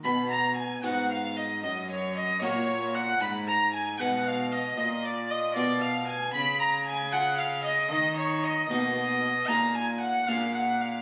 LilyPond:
<<
  \new Staff \with { instrumentName = "Viola" } { \time 6/8 \key ces \lydian \tempo 4. = 76 b''8 bes''8 aes''8 fis''8 f''8 dis''8 | ees''8 des''8 ees''8 des''4 ges''8 | ces'''8 bes''8 aes''8 ges''8 f''8 ees''8 | ees''8 d''8 ees''8 d''8 f''8 aes''8 |
ces'''8 bes''8 aes''8 ges''8 f''8 ees''8 | ees''8 des''8 ees''8 ees''4. | bes''8 aes''8 ges''8 f''8 ges''8 f''8 | }
  \new Staff \with { instrumentName = "Violin" } { \time 6/8 \key ces \lydian b''8 bes''8 aes''8 fis''8 f''8 dis''8 | ees''8 des''8 ees''8 des''4 ges''8 | ces'''8 bes''8 aes''8 ges''8 f''8 ees''8 | ees''8 d''8 ees''8 d''8 f''8 aes''8 |
ces'''8 bes''8 aes''8 ges''8 f''8 ees''8 | ees''8 des''8 ees''8 ees''4. | bes''8 aes''8 ges''8 f''8 ges''8 f''8 | }
  \new Staff \with { instrumentName = "Harpsichord" } { \time 6/8 \key ces \lydian r4. <b dis' fis'>4. | r4. <bes ges' bes'>4. | r4. <aes ees' ces''>4. | r4. <f' bes'>4. |
r4. <f' aes'>4. | r4. <bes ees' ges'>4. | <bes ees' aes'>4. <bes d' aes'>4. | }
  \new Staff \with { instrumentName = "Harpsichord" } { \clef bass \time 6/8 \key ces \lydian b,4. aes,4. | ges,4. bes,4. | aes,4. ces4. | bes,4. ces4. |
des2. | ees4. ces4. | bes,4. bes,4. | }
  \new Staff \with { instrumentName = "Cello" } { \clef bass \time 6/8 \key ces \lydian b,4. aes,4. | ges,4. bes,4. | aes,4. ces4. | bes,4. ces4. |
des2. | ees4. ces4. | bes,4. bes,4. | }
>>